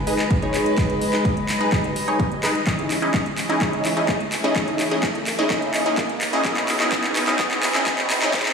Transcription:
Already playing: string section G#3 B4 D#5, riser
0.07 sub bass G#1, supersaw synth D#4 G#4 B4, open hi-hat
0.19 clap, closed hi-hat
0.31 kick, closed hi-hat
0.42 sub bass G#1, supersaw synth D#4 G#4 C#5, closed hi-hat
0.54 clap, open hi-hat
0.66 closed hi-hat
0.78 sub bass G#1, supersaw synth D#4 G#4 B4, kick, clap, closed hi-hat
0.90 closed hi-hat
1.01 open hi-hat
1.13 sub bass G#1, supersaw synth D#4 G#4 B4, clap, closed hi-hat
1.25 kick, closed hi-hat
1.37 closed hi-hat
1.49 clap, open hi-hat
1.60 sub bass G#1, supersaw synth D#4 G#4 B4, closed hi-hat
1.72 kick, clap, closed hi-hat
1.84 closed hi-hat
1.96 open hi-hat
2.08 sub bass G#1, supersaw synth D#4 G#4 C#5, closed hi-hat
2.20 kick, closed hi-hat
2.32 closed hi-hat
2.43 sub bass G#1, supersaw synth D#4 G#4 B4, clap, open hi-hat
2.55 closed hi-hat
2.67 sub bass C#2, string section E3 C#4, supersaw synth C#4 D#4 E4 G#4 D#5, kick, clap, closed hi-hat
2.79 closed hi-hat
2.91 clap, open hi-hat
3.02 sub bass C#2, supersaw synth C#4 D#4 E4 G#4 D#5, closed hi-hat
3.14 kick, clap, closed hi-hat
3.26 closed hi-hat
3.38 clap, open hi-hat
3.49 sub bass C#2, supersaw synth C#4 D#4 E4 G#4 D#5, closed hi-hat
3.61 sub bass C#2, supersaw synth C#4 D#4 E4 G#4 D#5, kick, clap, closed hi-hat
3.73 closed hi-hat
3.85 clap, open hi-hat
3.97 sub bass C#2, supersaw synth C#4 D#4 E4 G#4 D#5, closed hi-hat
4.09 kick, clap, closed hi-hat
4.21 closed hi-hat
4.32 clap, open hi-hat
4.44 sub bass C#2, supersaw synth C#4 D#4 E4 G#4 D#5, closed hi-hat
4.56 sub bass C#2, supersaw synth C#4 D#4 E4 G#4, kick, clap, closed hi-hat
4.68 closed hi-hat
4.80 clap, open hi-hat
4.91 sub bass C#2, supersaw synth C#4 D#4 E4 G#4 D#5, closed hi-hat
5.03 kick, clap, closed hi-hat
5.15 closed hi-hat
5.27 clap, open hi-hat
5.38 sub bass C#2, supersaw synth C#4 D#4 E4 G#4 D#5, closed hi-hat
5.50 sub bass C#2, supersaw synth C#4 D#4 G#4 D#5, kick, clap, closed hi-hat
5.62 closed hi-hat
5.74 clap, open hi-hat
5.86 sub bass C#2, supersaw synth C#4 D#4 E4 G#4 D#5, closed hi-hat
5.98 kick, clap, closed hi-hat
6.09 closed hi-hat
6.21 clap, open hi-hat
6.33 sub bass C#2, supersaw synth C#4 D#4 E4 G#4 D#5, closed hi-hat
6.45 sub bass B1, string section F#3 B3, supersaw synth C#4 D#4 E4 G#4 D#5, kick, clap, closed hi-hat
6.57 clap, closed hi-hat
6.69 clap, open hi-hat
6.80 sub bass B1, supersaw synth C#4 D#4 E4 G#4 D#5, clap, closed hi-hat
6.92 sub bass B1, supersaw synth C#4 E4 G#4 D#5, kick, clap, closed hi-hat
7.04 clap, closed hi-hat
7.16 clap, open hi-hat
7.27 sub bass B1, supersaw synth C#4 D#4 E4 G#4 D#5, clap, closed hi-hat
7.39 sub bass B1, supersaw synth C#4 D#4 E4 G#4 D#5, kick, clap, closed hi-hat
7.51 clap, closed hi-hat
7.63 clap, open hi-hat
7.75 sub bass B1, supersaw synth C#4 D#4 E4 G#4 D#5, clap, closed hi-hat
7.87 sub bass B1, supersaw synth C#4 D#4 E4 G#4 D#5, kick, clap, closed hi-hat
7.98 clap, closed hi-hat
8.10 clap, open hi-hat
8.22 sub bass B1, supersaw synth C#4 D#4 E4 G#4 D#5, clap, closed hi-hat
8.34 string section A3, supersaw synth E4 G#4, kick, clap, closed hi-hat
8.40 clap
8.46 clap, closed hi-hat

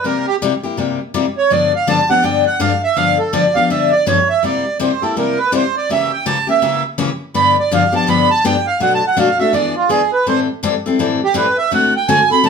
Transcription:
0.04 steel-string acoustic guitar C3 G3 A#3 E4 G4, accordion A#4
0.27 accordion G4
0.42 steel-string acoustic guitar C3 G3 A#3 E4 G4
0.63 steel-string acoustic guitar A#3 E4 G4
0.77 steel-string acoustic guitar C3 G3 A#3 E4 G4
1.14 steel-string acoustic guitar C3 G3 A#3 E4 G4
1.38 accordion C#5
1.50 steel-string acoustic guitar G2 D3 F3 B3 D4 G4, accordion D5
1.75 accordion F5
1.87 steel-string acoustic guitar G2 D3 F3 B3 D4 G4, accordion A5
2.10 steel-string acoustic guitar F3 B3 D4 G4, accordion F#5
2.22 steel-string acoustic guitar G2 D3 F3 B3 D4 G4, accordion G5
2.47 accordion F#5
2.60 steel-string acoustic guitar G2 D3 F3 B3 D4 G4, accordion F5
2.84 accordion E5
2.96 steel-string acoustic guitar G2 D3 F3 B3 D4 G4, accordion F5
3.19 accordion A4
3.33 steel-string acoustic guitar G2 D3 F3 B3 D4 G4, accordion D5
3.54 steel-string acoustic guitar F3 B3 D4 G4, accordion F5
3.70 steel-string acoustic guitar G2 D3 F3 B3 D4 G4, accordion E5
3.92 accordion D5
4.06 steel-string acoustic guitar G2 D3 F3 B3 D4 G4, accordion C#5
4.29 accordion E5
4.43 steel-string acoustic guitar C3 G3 A#3 E4 G4, accordion D5
4.79 steel-string acoustic guitar C3 G3 A#3 E4 G4, accordion C5
5.02 steel-string acoustic guitar A#3 E4 G4, accordion A4
5.16 steel-string acoustic guitar C3 G3 A#3 E4 G4, accordion A#4
5.38 accordion B4
5.52 steel-string acoustic guitar C3 G3 A#3 E4 G4, accordion C5
5.77 accordion D5
5.90 steel-string acoustic guitar C#3 E3 A#3 C#4 G4, accordion E5
6.12 accordion G5
6.26 steel-string acoustic guitar C#3 E3 A#3 C#4 G4, accordion A5
6.47 steel-string acoustic guitar A#3 C#4 G4, accordion E5
6.62 steel-string acoustic guitar C#3 E3 A#3 C#4 G4
6.98 steel-string acoustic guitar C#3 E3 A#3 C#4 G4
7.34 steel-string acoustic guitar G2 D3 F3 B3 D4 G4, accordion B5
7.60 accordion D5
7.71 steel-string acoustic guitar G2 D3 F3 B3 D4 G4, accordion F5
7.92 steel-string acoustic guitar F3 B3 D4 G4, accordion A5
8.07 steel-string acoustic guitar G2 D3 F3 B3 D4 G4, accordion B5
8.31 accordion A5
8.44 steel-string acoustic guitar G2 D3 F3 B3 D4 G4, accordion G5
8.67 accordion F5
8.80 steel-string acoustic guitar B2 F#3 A3 D4 F#4, accordion F#5
8.94 accordion A5
9.07 accordion F#5
9.17 steel-string acoustic guitar B2 F#3 A3 D4 F#4, accordion F5
9.39 steel-string acoustic guitar A3 D4 F#4, accordion E5
9.53 steel-string acoustic guitar E3 B3 D4 G#4, accordion D5
9.76 accordion F4
9.89 steel-string acoustic guitar E3 B3 D4 G#4, accordion G#4
10.13 accordion B4
10.26 steel-string acoustic guitar A2 E3 G3 C4 E4 A4, accordion C5
10.63 steel-string acoustic guitar A2 E3 G3 C4 E4 A4
10.86 steel-string acoustic guitar G3 C4 E4 A4
10.99 steel-string acoustic guitar A2 E3 G3 C4 E4 A4
11.24 accordion G4
11.34 steel-string acoustic guitar A2 E3 G3 C4 E4 A4, accordion B4
11.58 accordion E5
11.71 steel-string acoustic guitar D3 A3 C4 F#4 A4, accordion F#5
11.97 accordion G5
12.08 steel-string acoustic guitar D3 A3 C4 F#4 A4, accordion G#5
12.30 steel-string acoustic guitar C4 F#4 A4, accordion B5
12.44 steel-string acoustic guitar D3 A3 C4 F#4 A4, accordion A5

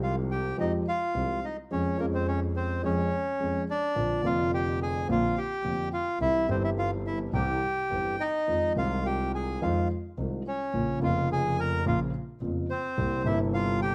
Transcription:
Already playing: double bass C2, grand piano C2 C3 F3 G#3 C4 G4
0.03 bandoneon F4 F5
0.31 bandoneon G4 G5
0.58 grand piano F2 F3 G#3 C4 G4, double bass F2, bandoneon D#4 D#5
0.88 bandoneon F4 F5
1.14 grand piano C2 C3 F3 G#3 C4 G4, double bass C2
1.45 bandoneon D#4 D#5
1.71 grand piano F2 F3 G#3 C#4 G#4, double bass F2, bandoneon C#4 C#5
1.97 grand piano F2 F3 G#3 C#4 G#4, double bass F2, bandoneon A#3 A#4
2.14 bandoneon C4 C5
2.27 bandoneon C#4 C#5
2.56 bandoneon C4 C5
2.83 grand piano F2 F3 G#3 C#4 G#4, double bass F2, bandoneon C#4 C#5
3.40 grand piano F2 F3 G#3 C#4 G#4, double bass F2
3.70 bandoneon D4 D5
3.95 grand piano A#1 A#2 D3 A#3 C4 F4, double bass A#1
4.22 grand piano F1 F2 D3 A#3 C4 F4, double bass F1, bandoneon F4 F5
4.54 bandoneon G4 G5
4.82 bandoneon G#4 G#5
5.08 double bass A#1, grand piano A#1 A#2 D3 A#3 C4 F4, bandoneon F4 F5
5.38 bandoneon G4 G5
5.64 double bass F1, grand piano F1 F2 D3 A#3 C4 F4
5.93 bandoneon F4 F5
6.20 double bass C2, grand piano C2 C3 E3 G3 C4 G4, bandoneon E4 E5
6.47 double bass G1, grand piano G1 G2 E3 G3 C4 G4, bandoneon C4
6.51 bandoneon C5
6.64 bandoneon E4 E5
6.78 bandoneon F4 F5
7.07 bandoneon E4 E5
7.32 double bass C2, grand piano C2 C3 E3 G3 C4 G4, bandoneon G4 G5
7.90 double bass G1, grand piano G1 G2 E3 G3 C4 G4
8.20 bandoneon D#4 D#5
8.47 double bass F2, grand piano F2 D#3 F3 G#3 C4 F4
8.74 double bass C2, grand piano C2 C3 D#3 G#3 C4 F4, bandoneon F4 F5
9.06 bandoneon G4 G5
9.35 bandoneon G#4 G#5
9.61 double bass F2, grand piano F2 D#3 F3 G#3 C4 F4, bandoneon F4 F5
10.17 grand piano C2 C3 D#3 G#3 C4 F4, double bass C2
10.48 bandoneon C#4 C#5
10.73 double bass A#1, grand piano A#1 A#2 C#3 F3 A#3 F4
11.00 grand piano F1 F2 C#3 F3 A#3, double bass F1, bandoneon F4
11.04 grand piano F4, bandoneon F5
11.32 bandoneon G#4 G#5
11.59 bandoneon A#4 A#5
11.85 double bass A#1, grand piano A#1 A#2 C#3 F3 A#3 F4, bandoneon F4 F5
12.41 double bass F1, grand piano F1 F2 C#3 F3 A#3 F4
12.70 bandoneon C4 C5
12.98 double bass C2, grand piano C2 C3 G3 A#3 E4
13.24 grand piano G1 G2 C3 G3 A#3 E4, double bass G1, bandoneon E4 E5
13.54 bandoneon F4 F5
13.82 bandoneon G4 G5

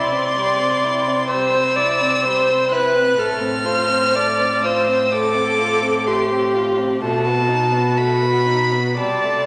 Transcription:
Already playing: cello C3, violin E4 C6, viola D5
0.12 violin C4
0.36 violin G3
0.59 violin C4
0.84 violin E4
1.07 violin C4
1.28 violin G3 E6, viola C5
1.54 violin C4
1.76 violin E4, viola D5
2.01 violin C4
2.25 violin G3, viola C5
2.49 violin C4
2.72 violin E4 F#6, viola B4
2.95 violin C4
3.18 cello A2, violin A3 F6, viola A4
3.40 violin C4
3.64 violin F4, viola C5
3.89 violin C4
4.15 violin A3, viola D5
4.39 violin C4
4.63 violin F4 E6, viola C5
4.88 violin C4
5.11 violin A3 D6, viola A4
5.34 violin C4
5.58 violin F4
5.82 violin C4
6.06 violin A3 C6, viola G4
6.31 violin C4
6.54 violin F4
6.78 violin C4
7.02 cello B2, violin A3 A5, viola F#4
7.26 violin B3
7.49 violin D#4
7.73 violin B3
7.97 violin A3 B5
8.22 violin B3
8.47 violin D#4
8.72 violin B3
8.97 cello C3, violin G3 A5, viola D5
9.24 violin A3

